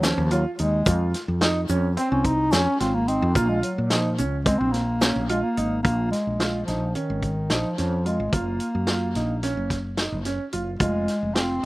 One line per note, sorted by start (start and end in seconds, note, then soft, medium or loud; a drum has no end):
0.00 0.15 D#2 medium
0.00 0.20 C#4 medium
0.00 snare loud
0.00 closed hi-hat medium
0.00 shaker medium
0.05 0.32 F3 medium
0.18 0.44 D#2 medium
0.31 0.45 F#3 medium
0.31 0.48 F4 medium
0.31 closed hi-hat medium
0.31 shaker soft
0.59 0.86 D#2 medium
0.59 1.11 G#3 medium
0.59 0.76 D#4 medium
0.59 closed hi-hat medium
0.86 1.13 F2 loud
0.86 1.19 F4 medium
0.86 kick loud
0.86 closed hi-hat medium
0.86 shaker medium
1.14 snare soft
1.14 closed hi-hat medium
1.28 1.67 F2 medium
1.41 1.58 D#4 loud
1.41 snare loud
1.41 closed hi-hat medium
1.69 1.96 F2 medium
1.69 1.86 C#4 medium
1.69 closed hi-hat medium
1.69 shaker soft
1.97 2.30 C4 medium
1.97 2.11 C4 loud
1.97 closed hi-hat medium
2.11 2.51 C2 medium
2.11 2.27 C#4 medium
2.24 2.53 D#4 loud
2.24 kick medium
2.24 closed hi-hat medium
2.52 2.66 F2 medium
2.52 2.79 C#4 loud
2.52 2.69 C#4 medium
2.52 snare loud
2.52 closed hi-hat medium
2.52 shaker soft
2.80 3.20 G#1 medium
2.80 2.96 C4 medium
2.80 2.97 F4 medium
2.80 snare soft
2.80 closed hi-hat medium
2.80 shaker soft
2.94 3.09 A#3 medium
3.08 3.36 C4 medium
3.08 3.24 D#4 medium
3.08 closed hi-hat medium
3.22 3.35 F2 loud
3.35 3.62 A#1 medium
3.35 3.50 A#3 loud
3.35 3.68 F4 loud
3.35 kick loud
3.35 closed hi-hat medium
3.35 shaker soft
3.49 3.62 G#3 medium
3.62 3.89 F#3 medium
3.62 closed hi-hat medium
3.78 4.21 A#2 medium
3.90 4.17 F3 medium
3.90 4.07 D#4 medium
3.90 snare loud
3.90 closed hi-hat medium
4.18 4.58 C#2 medium
4.18 4.35 C#4 medium
4.18 closed hi-hat medium
4.18 shaker soft
4.45 4.60 G#3 loud
4.45 4.79 C4 medium
4.45 kick loud
4.45 closed hi-hat medium
4.59 5.12 A#1 medium
4.59 4.73 C4 medium
4.72 5.28 A#3 medium
4.72 snare soft
4.72 closed hi-hat medium
5.01 5.18 C#4 medium
5.01 snare loud
5.01 closed hi-hat medium
5.01 shaker medium
5.16 5.42 A#1 medium
5.29 5.45 G#3 medium
5.29 5.46 F4 medium
5.29 closed hi-hat medium
5.43 5.82 A#3 medium
5.57 5.83 G#1 medium
5.57 5.73 D#4 medium
5.57 closed hi-hat medium
5.83 6.11 A#1 loud
5.83 6.09 A#3 medium
5.83 6.17 F4 medium
5.83 kick loud
5.83 closed hi-hat medium
6.12 6.63 G#3 medium
6.12 snare soft
6.12 closed hi-hat medium
6.27 6.65 A#1 medium
6.40 6.56 F4 medium
6.40 snare medium
6.40 closed hi-hat medium
6.66 6.94 A#1 medium
6.66 6.97 F3 medium
6.66 6.84 D#4 medium
6.66 snare soft
6.66 closed hi-hat medium
6.95 7.53 D#3 medium
6.95 7.28 C#4 medium
6.95 closed hi-hat medium
7.10 7.48 G#1 medium
7.22 kick medium
7.22 closed hi-hat soft
7.50 7.64 A#1 medium
7.50 7.78 F3 medium
7.50 7.66 D#4 medium
7.50 snare medium
7.50 closed hi-hat medium
7.78 8.17 F2 medium
7.78 8.07 F3 medium
7.78 7.94 C#4 medium
7.78 snare soft
7.78 closed hi-hat medium
8.06 8.35 G#3 medium
8.06 8.22 F4 medium
8.06 closed hi-hat soft
8.20 8.32 G#1 medium
8.33 8.59 F#1 medium
8.33 9.98 A#3 medium
8.33 8.66 F4 medium
8.33 kick medium
8.33 closed hi-hat medium
8.60 closed hi-hat medium
8.75 9.17 F#2 medium
8.87 9.04 F4 medium
8.87 snare medium
8.87 closed hi-hat medium
9.15 9.55 A#1 medium
9.15 9.32 D#4 medium
9.15 snare soft
9.15 closed hi-hat medium
9.43 9.76 C#4 medium
9.43 snare soft
9.43 closed hi-hat medium
9.57 10.09 F#1 medium
9.70 kick medium
9.70 snare soft
9.70 closed hi-hat medium
9.97 10.15 D#4 medium
9.97 snare medium
9.97 closed hi-hat medium
10.12 10.38 F#1 medium
10.25 10.42 C#4 medium
10.25 snare soft
10.25 closed hi-hat medium
10.52 10.79 F#1 medium
10.52 10.69 F4 medium
10.52 closed hi-hat medium
10.79 11.06 F1 loud
10.79 11.36 G#3 loud
10.79 11.13 F4 medium
10.79 kick loud
10.79 closed hi-hat medium
11.08 snare soft
11.08 closed hi-hat medium
11.23 11.61 F1 medium
11.34 11.65 C4 medium
11.34 11.52 F4 medium
11.34 snare loud
11.34 closed hi-hat medium